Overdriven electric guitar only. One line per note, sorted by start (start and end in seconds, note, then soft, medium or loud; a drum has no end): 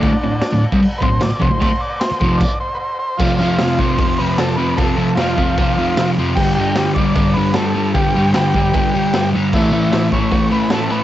0.02 0.12 D2 loud
0.02 0.13 A2 loud
0.15 muted overdriven electric guitar stroke medium
0.24 0.39 D2 medium
0.24 0.40 A2 medium
0.53 0.63 D2 medium
0.53 0.63 A2 medium
0.65 muted overdriven electric guitar stroke medium
0.73 0.82 C3 medium
0.73 0.83 G3 loud
0.84 muted overdriven electric guitar stroke medium
1.02 1.09 D2 loud
1.02 1.09 A2 loud
1.10 1.20 D2 medium
1.10 1.20 A2 medium
1.21 1.31 D2 medium
1.21 1.32 A2 medium
1.32 muted overdriven electric guitar stroke medium
1.40 1.50 F2 medium
1.40 1.51 C3 loud
1.50 1.59 D2 medium
1.50 1.60 A2 medium
1.60 1.70 D2 loud
1.60 1.71 A2 loud
2.11 muted overdriven electric guitar stroke medium
2.21 2.40 F2 loud
2.21 2.41 C3 loud
2.21 2.41 F3 loud
3.19 3.39 F2 loud
3.19 3.40 C3 loud
3.19 3.41 F3 loud
3.39 3.59 F2 medium
3.39 3.60 C3 medium
3.39 3.60 F3 loud
3.60 3.78 F2 medium
3.60 3.78 C3 medium
3.60 3.80 F3 loud
3.79 3.97 F2 medium
3.79 3.97 C3 medium
3.79 3.98 F3 medium
3.98 4.18 F2 loud
3.98 4.19 C3 medium
3.98 4.19 F3 loud
4.19 4.38 F2 medium
4.19 4.39 C3 medium
4.19 4.38 F3 medium
4.39 4.56 F2 medium
4.39 4.56 C3 medium
4.39 4.58 F3 loud
4.57 4.76 F2 medium
4.57 4.77 C3 medium
4.57 4.77 F3 medium
4.77 4.95 F2 loud
4.77 4.96 C3 loud
4.77 4.96 F3 loud
4.96 5.15 F2 medium
4.96 5.17 C3 loud
4.96 5.18 F3 loud
5.17 5.36 F2 medium
5.17 5.38 C3 medium
5.17 5.38 F3 loud
5.37 5.56 F2 medium
5.37 5.57 C3 medium
5.37 5.58 F3 loud
5.57 5.76 F2 loud
5.57 5.77 C3 loud
5.57 5.78 F3 loud
5.78 5.96 F2 medium
5.78 5.97 C3 medium
5.78 5.97 F3 loud
5.97 6.17 F2 medium
5.97 6.18 C3 medium
5.97 6.18 F3 medium
6.18 6.36 F2 medium
6.18 6.37 C3 medium
6.18 6.37 F3 loud
6.38 6.58 G2 loud
6.38 6.57 D3 loud
6.38 6.59 G3 loud
6.58 6.77 G2 medium
6.58 6.77 D3 medium
6.58 6.78 G3 loud
6.77 6.96 G2 medium
6.77 6.97 D3 loud
6.77 6.98 G3 loud
6.97 7.14 G2 medium
6.97 7.15 D3 loud
6.97 7.16 G3 medium
7.15 7.35 G2 medium
7.15 7.35 D3 loud
7.15 7.37 G3 loud
7.36 7.54 G2 medium
7.36 7.56 D3 medium
7.36 7.56 G3 loud
7.55 7.73 G2 medium
7.55 7.74 D3 medium
7.55 7.75 G3 medium
7.75 7.93 G2 medium
7.75 7.94 D3 medium
7.75 7.95 G3 medium
7.95 8.13 G2 loud
7.95 8.14 D3 loud
7.95 8.15 G3 loud
8.14 8.33 G2 medium
8.14 8.34 D3 medium
8.14 8.34 G3 loud
8.34 8.53 G2 medium
8.34 8.54 D3 loud
8.34 8.55 G3 medium
8.55 8.72 G2 medium
8.55 8.73 D3 medium
8.55 8.73 G3 medium
8.73 8.93 G2 loud
8.73 8.94 D3 loud
8.73 8.94 G3 loud
8.94 9.13 G2 medium
8.94 9.14 D3 medium
8.94 9.14 G3 loud
9.14 9.33 G2 medium
9.14 9.34 D3 medium
9.14 9.35 G3 medium
9.34 9.52 G2 medium
9.34 9.53 D3 medium
9.34 9.53 G3 loud
9.54 9.71 A2 medium
9.54 9.72 E3 loud
9.54 9.73 A3 loud
9.72 9.91 A2 medium
9.72 9.91 E3 medium
9.72 9.93 A3 loud
9.92 10.11 A2 medium
9.92 10.12 E3 loud
9.92 10.12 A3 loud
10.12 10.30 A2 medium
10.12 10.30 E3 medium
10.12 10.32 A3 medium
10.32 10.49 A2 loud
10.32 10.50 E3 loud
10.32 10.51 A3 loud
10.50 10.70 A2 medium
10.50 10.70 E3 medium
10.50 10.72 A3 loud
10.71 10.88 A2 medium
10.71 10.89 E3 medium
10.71 10.90 A3 loud
10.89 11.04 A2 medium
10.89 11.04 E3 loud
10.89 11.04 A3 loud